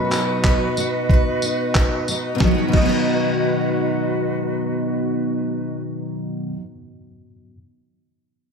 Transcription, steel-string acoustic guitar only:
0.00 2.34 B2 medium
0.00 0.65 F#3 medium
0.11 1.42 D#4 medium
0.44 1.10 B4 medium
0.77 1.76 B3 medium
1.10 2.54 B4 medium
1.42 2.08 D#4 medium
1.76 2.47 B3 medium
2.08 2.51 D#4 medium
2.35 2.68 B2 medium
2.40 2.73 D#3 medium
2.40 2.77 F#3 medium
2.48 2.82 B3 medium
2.48 2.85 D#4 medium
2.55 2.88 B4 medium
2.68 6.52 B2 medium
2.74 6.54 D#3 medium
2.78 6.56 F#3 medium
2.82 6.58 B3 medium
2.82 6.60 D#4 medium
2.89 6.62 B4 medium

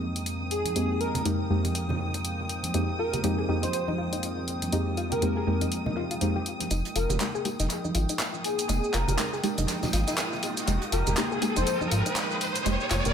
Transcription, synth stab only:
0.75 1.23 F2 medium
0.75 1.23 G#3 medium
0.75 1.23 A#3 medium
0.75 1.23 C4 medium
0.75 1.23 D#4 medium
0.75 1.23 G4 medium
1.25 1.41 F2 medium
1.25 1.41 G#3 medium
1.25 1.41 A#3 medium
1.25 1.41 C4 medium
1.25 1.41 D#4 medium
1.25 1.41 G4 medium
1.50 1.66 F2 loud
1.50 1.66 G#3 medium
1.50 1.66 A#3 medium
1.50 1.66 C4 medium
1.50 1.66 D#4 medium
1.50 1.66 G4 loud
2.74 2.90 F2 medium
2.74 2.90 G#3 medium
2.74 2.90 A#3 medium
2.74 2.90 C4 medium
2.74 2.90 D#4 medium
2.74 2.90 G4 medium
3.23 3.46 F2 loud
3.23 3.46 G#3 medium
3.23 3.46 A#3 medium
3.23 3.46 C4 medium
3.23 3.46 D#4 medium
3.23 3.46 G4 loud
3.48 3.64 F2 medium
3.48 3.64 G#3 medium
3.48 3.64 A#3 medium
3.48 3.64 C4 medium
3.48 3.64 D#4 medium
3.48 3.64 G4 medium
4.72 5.19 F2 medium
4.72 5.20 G#3 medium
4.72 5.20 A#3 medium
4.72 5.20 C4 medium
4.72 5.20 D#4 medium
4.72 5.20 G4 medium
5.22 5.38 F2 medium
5.22 5.38 G#3 medium
5.22 5.38 A#3 medium
5.22 5.38 C4 medium
5.22 5.38 D#4 medium
5.22 5.38 G4 medium
5.47 5.62 F2 loud
5.47 5.62 G#3 medium
5.47 5.62 A#3 medium
5.47 5.62 C4 medium
5.47 5.63 D#4 medium
5.47 5.63 G4 loud
6.21 6.37 F2 medium
6.21 6.37 G#3 medium
6.21 6.37 A#3 medium
6.21 6.37 C4 medium
6.21 6.37 D#4 medium
6.21 6.37 G4 medium
6.71 6.86 G#3 medium
6.71 6.86 A#3 medium
6.71 6.86 D#4 medium
6.71 6.87 G4 medium
7.20 7.43 G#3 loud
7.20 7.43 A#3 medium
7.20 7.43 D#4 medium
7.20 7.43 G4 loud
7.45 7.61 G#3 medium
7.45 7.61 A#3 medium
7.45 7.61 D#4 medium
7.45 7.61 G4 medium
8.69 9.16 G#3 medium
8.69 9.16 A#3 medium
8.69 9.16 D#4 medium
8.69 9.16 G4 medium
9.18 9.34 G#3 medium
9.18 9.34 A#3 medium
9.18 9.34 D#4 medium
9.18 9.34 G4 medium
9.43 9.59 G#3 loud
9.43 9.59 A#3 medium
9.43 9.59 D#4 medium
9.43 9.59 G4 loud
10.67 10.83 G#3 medium
10.67 10.83 A#3 medium
10.67 10.83 D#4 medium
10.67 10.83 G4 medium
11.17 11.39 G#3 loud
11.17 11.39 A#3 medium
11.17 11.39 D#4 medium
11.17 11.40 G4 loud
11.42 11.57 G#3 medium
11.42 11.57 A#3 medium
11.42 11.57 D#4 medium
11.42 11.58 G4 medium
12.66 13.13 G#3 medium
12.66 13.13 A#3 medium
12.66 13.13 D#4 medium
12.66 13.13 G4 medium

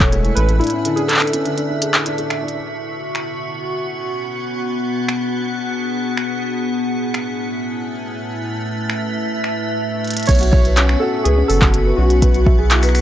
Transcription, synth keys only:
0.00 0.32 C#5 loud
0.35 0.61 B4 loud
0.59 0.98 E4 loud
0.96 1.02 G#4 medium
1.08 2.26 A4 medium
10.27 10.50 C#5 loud
10.52 11.02 C#5 loud
11.00 11.25 A4 medium
11.24 11.50 G#4 loud
11.48 11.94 A4 loud
11.97 12.66 F#4 medium

